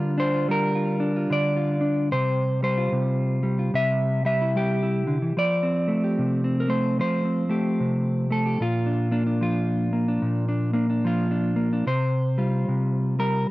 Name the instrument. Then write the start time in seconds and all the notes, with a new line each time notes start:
clean electric guitar
Already playing: D3 G3 D4 F4 A#4
0.18 D4 C5
0.34 F4
0.49 G3 A#4
0.75 F4
1.00 D4
1.16 F4
1.30 D3 D5
1.56 F4
1.81 D4
2.12 C3 C5
2.63 G3 C5
2.78 F4
2.92 C3
3.43 G3
3.59 F4
3.74 C3 E5
4.25 G3 E5
4.41 E4
4.56 G3 G4
4.83 E4
5.07 D3
5.22 E3
5.37 F3 D5
5.63 C4
5.88 A3
6.04 G4
6.18 C3
6.44 C4
6.60 A#4
6.68 A3 C5
6.99 F3 C5
7.25 C4
7.49 A3 G4
7.80 C3
8.30 A3 A4
8.46 G4
8.60 A#2 F4
8.86 D4
9.11 A#3 D4
9.27 D4
9.41 F3 F4
9.93 A#3
10.08 D4
10.22 A#2
10.49 D4
10.73 A#3 D4
10.90 D4
11.05 F3 F4
11.31 D4
11.56 A#3
11.73 D4
11.87 C3 C5
12.38 G3 F4
12.68 C3
13.19 G3 A#4